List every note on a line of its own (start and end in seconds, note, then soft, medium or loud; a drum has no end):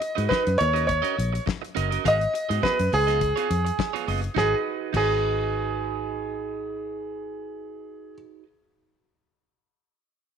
0.00 0.27 D#5 loud
0.00 muted clean electric guitar stroke soft
0.00 closed hi-hat medium
0.15 0.27 G#2 medium
0.15 0.28 D#4 medium
0.15 0.28 F#4 medium
0.15 0.29 B4 medium
0.15 0.29 D#5 medium
0.15 closed hi-hat medium
0.29 0.48 D#4 medium
0.29 0.44 F#4 medium
0.29 0.57 B4 medium
0.29 0.44 B4 medium
0.29 0.43 D#5 medium
0.29 kick loud
0.29 snare loud
0.45 0.56 F#2 medium
0.45 muted clean electric guitar stroke medium
0.45 closed hi-hat medium
0.58 1.00 D#2 loud
0.58 0.86 C#5 loud
0.58 muted clean electric guitar stroke soft
0.58 closed hi-hat medium
0.73 0.86 C#4 medium
0.73 0.86 F#4 medium
0.73 0.87 A#4 medium
0.73 0.87 D#5 medium
0.73 closed hi-hat medium
0.87 1.42 C#5 medium
0.87 muted clean electric guitar stroke soft
0.87 kick loud
0.87 closed hi-hat medium
1.02 1.15 C#4 medium
1.02 1.16 F#4 medium
1.02 1.16 A#4 medium
1.02 1.17 D#5 medium
1.02 closed hi-hat soft
1.17 1.38 A#1 loud
1.17 muted clean electric guitar stroke soft
1.17 closed hi-hat medium
1.33 muted clean electric guitar stroke soft
1.33 closed hi-hat soft
1.46 muted clean electric guitar stroke soft
1.46 kick loud
1.46 snare loud
1.62 muted clean electric guitar stroke medium
1.62 closed hi-hat soft
1.75 1.96 F#1 medium
1.75 1.90 C#4 medium
1.75 1.90 F#4 medium
1.75 1.90 A#4 medium
1.75 1.89 D#5 medium
1.75 closed hi-hat medium
1.90 2.04 C#4 soft
1.90 2.04 F#4 medium
1.90 2.04 A#4 medium
1.90 2.04 D#5 medium
1.90 closed hi-hat medium
2.04 2.25 G#1 loud
2.04 2.23 B3 medium
2.04 2.19 F#4 medium
2.04 2.19 G#4 loud
2.04 2.60 D#5 loud
2.04 2.19 F5 loud
2.04 kick loud
2.04 closed hi-hat medium
2.20 muted clean electric guitar stroke soft
2.20 closed hi-hat soft
2.34 muted clean electric guitar stroke soft
2.34 closed hi-hat medium
2.49 2.59 G#2 loud
2.49 2.61 B3 soft
2.49 2.62 F#4 soft
2.49 2.62 G#4 soft
2.49 2.62 D#5 medium
2.49 closed hi-hat soft
2.62 2.80 B3 medium
2.62 2.79 F#4 medium
2.62 2.78 G#4 medium
2.62 2.90 B4 loud
2.62 2.78 D#5 medium
2.62 kick loud
2.62 snare loud
2.79 2.88 F#2 medium
2.79 muted clean electric guitar stroke soft
2.79 closed hi-hat medium
2.92 3.32 C#2 loud
2.92 4.04 G#4 loud
2.92 muted clean electric guitar stroke soft
2.92 open hi-hat medium
3.07 3.20 B3 medium
3.07 3.20 F4 medium
3.07 3.20 G#4 medium
3.07 3.20 D#5 medium
3.07 snare soft
3.07 closed hi-hat medium
3.21 muted clean electric guitar stroke soft
3.21 kick loud
3.21 closed hi-hat medium
3.36 3.48 B3 medium
3.36 3.49 F4 medium
3.36 3.49 G#4 medium
3.36 3.49 C#5 medium
3.36 closed hi-hat soft
3.50 3.70 F2 medium
3.50 muted clean electric guitar stroke soft
3.50 closed hi-hat medium
3.65 muted clean electric guitar stroke soft
3.65 closed hi-hat soft
3.79 muted clean electric guitar stroke soft
3.79 kick loud
3.79 snare loud
3.93 4.06 B3 medium
3.93 4.06 F4 medium
3.93 4.07 G#4 medium
3.93 4.08 C#5 medium
3.93 closed hi-hat soft
4.07 4.27 F#1 medium
4.07 4.21 B3 medium
4.07 4.22 F4 medium
4.07 4.21 G#4 medium
4.07 4.21 D#5 medium
4.07 open hi-hat medium
4.22 muted clean electric guitar stroke soft
4.22 closed hi-hat soft
4.35 4.53 G#1 medium
4.35 4.92 D#4 medium
4.35 4.94 F#4 medium
4.35 4.53 G#4 medium
4.35 4.96 B4 medium
4.35 kick loud
4.35 snare medium
4.40 4.97 D#5 medium
4.93 8.13 G#1 loud
4.93 8.43 D#4 medium
4.93 8.44 F#4 medium
4.93 8.14 G#4 medium
4.93 8.46 B4 medium
4.93 kick loud
4.93 crash medium
4.97 8.47 D#5 medium